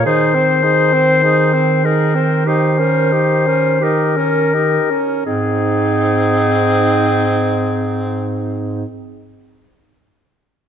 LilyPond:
<<
  \new Staff \with { instrumentName = "Clarinet" } { \time 4/4 \key aes \major \tempo 4 = 44 c''4. bes'8 c''4 bes'4 | aes'1 | }
  \new Staff \with { instrumentName = "Alto saxophone" } { \time 4/4 \key aes \major aes'16 c''16 aes'16 c''16 aes'16 c''16 aes'16 c''16 g'16 bes'16 g'16 bes'16 g'16 bes'16 g'16 bes'16 | ees'1 | }
  \new Staff \with { instrumentName = "Tenor saxophone" } { \time 4/4 \key aes \major ees'16 c'16 ees'16 c'16 ees'16 c'16 ees'16 c'16 ees'16 des'16 ees'16 des'16 ees'16 des'16 ees'16 des'16 | c'1 | }
  \new Staff \with { instrumentName = "Bass clarinet" } { \clef bass \time 4/4 \key aes \major ees2.~ ees8 r8 | aes,1 | }
>>